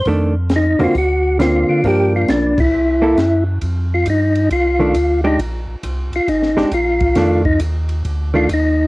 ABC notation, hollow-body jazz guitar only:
X:1
M:4/4
L:1/8
Q:"Swing" 1/4=135
K:Fmix
V:1 name="Hollow-body jazz guitar"
[E,A,D] z2 [D,B,C_G] z2 [D,^A,C]2 | [F,B,D]3 z2 [B,=EA] z2 | z4 z [E,A,D] z [_A,DG] | z4 z [_A,DG] z2 |
[E,A,D] z4 [E,A,D] z2 |]